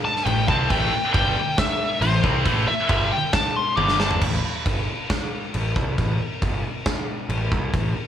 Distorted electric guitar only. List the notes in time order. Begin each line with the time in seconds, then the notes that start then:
0.26 A2 E3
0.49 C3 G3 C4
0.70 A2 E3 A3
0.94 muted distorted electric guitar stroke
1.14 G2 D3 G3
2.02 A2 E3
2.23 C3 G3 C4
2.45 A2 E3 A3
2.68 muted distorted electric guitar stroke
2.89 G2 D3 G3
3.77 G2 D3 G3